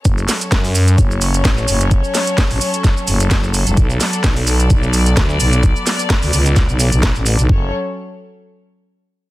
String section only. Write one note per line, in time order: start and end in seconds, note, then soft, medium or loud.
0.05 7.45 F#3 medium
0.05 3.74 C#4 medium
0.05 7.45 A4 medium
0.05 3.74 C#5 medium
3.77 7.46 B3 medium
3.77 7.46 D5 medium
7.49 7.71 F#3 medium
7.49 7.71 C#4 medium
7.49 7.71 A4 medium
7.49 7.71 C#5 medium